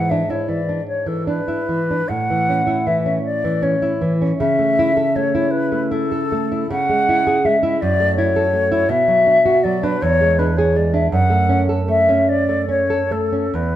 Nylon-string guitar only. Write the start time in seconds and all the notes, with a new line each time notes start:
Already playing: G#2 E3
0.11 D4
0.30 E4
0.48 E3
0.69 D4
1.06 E3
1.27 D4
1.48 E4
1.69 E3
1.91 D4
2.10 A2
2.30 E3
2.49 C#4
2.67 E4
2.87 E3
3.06 C#4
3.44 E3
3.62 C#4
3.82 E4
4.01 E3
4.22 C#4
4.40 C#3
4.59 A3
4.79 E4
4.97 A4
5.16 A3
5.35 E4
5.72 A3
5.91 E4
6.12 A4
6.32 A3
6.52 E4
6.71 C#3
6.89 G#3
7.09 E4
7.27 G#4
7.45 G#3
7.63 E4
7.82 F#2
8.00 A3
8.18 E4
8.36 A4
8.53 A3
8.72 E4
8.89 B2
9.08 F#3
9.27 D4
9.46 F#4
9.65 F#3
9.83 D4
10.02 E2
10.21 G#3
10.39 D4
10.58 G#4
10.76 G#3
10.94 D4
11.12 F#2
11.30 A3
11.49 C#4
11.69 A4
11.88 A3
12.09 C#4
12.49 A3
12.69 C#4
12.90 A4
13.11 A3
13.32 C#4
13.54 E2